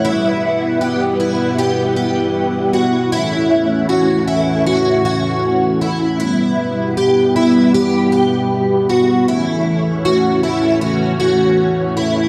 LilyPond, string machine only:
\new Staff \with { instrumentName = "String machine" } { \time 4/4 \key e \dorian \tempo 4 = 78 << { <e' fis''>1~ | <e' fis''>1~ | <e' fis''>1~ | <e' fis''>1 | } \\ { <g b b'>1 | <e a cis' cis''>1 | <g b b'>1 | <e a cis' cis''>1 | } >> }